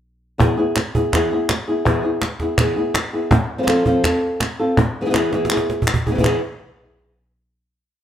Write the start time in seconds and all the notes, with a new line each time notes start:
0.38 E3 B3 E4 G#4, cajon bass
0.57 B3 E4 G#4
0.76 muted nylon-string guitar stroke, cajon slap, clap
0.95 B3 E4 G#4, cajon bass
1.12 E3 B3 E4 G#4, cajon bass, cajon slap, clap
1.31 B3 E4 G#4
1.49 muted nylon-string guitar stroke, cajon slap, clap
1.68 B3 E4 G#4
1.85 E3 B3 E4 G#4, cajon bass
2.03 B3 E4 G#4
2.21 muted nylon-string guitar stroke, cajon slap, clap
2.40 B3 E4 G#4, cajon bass, cajon slap
2.58 E3 B3 E4 G#4, cajon bass, clap
2.76 B3 E4 G#4
2.94 muted nylon-string guitar stroke, cajon slap, clap
3.13 B3 E4 G#4
3.31 muted nylon-string guitar stroke, cajon bass
3.58 F3 C4 F4 A4
3.63 F3 C4 F4 A4
3.67 C4 F4 A4, cajon slap, clap
3.85 F3 C4 F4 A4, cajon bass
4.04 C4 F4 A4, cajon bass, cajon slap, clap
4.22 cajon slap
4.40 muted nylon-string guitar stroke, cajon slap, clap
4.60 C4 F4 A4
4.77 muted nylon-string guitar stroke, cajon bass
5.01 E3 B3 E4 G#4
5.05 E3 B3 E4 G#4
5.10 E3 B3 E4 G#4, clap
5.14 E3 B3 E4 G#4, cajon slap
5.33 E3 B3 E4 G#4, cajon slap
5.45 cajon slap
5.50 B3 E4 G#4, clap
5.57 cajon slap
5.70 cajon slap
5.82 cajon bass
5.87 muted nylon-string guitar stroke, clap
5.94 cajon bass
6.06 B3 E4 G#4, cajon bass
6.10 E3 B3 E4 G#4
6.15 E3 B3 E4 G#4, cajon bass
6.19 E3 B3 E4 G#4
6.24 E3 B3 E4 G#4, cajon bass, clap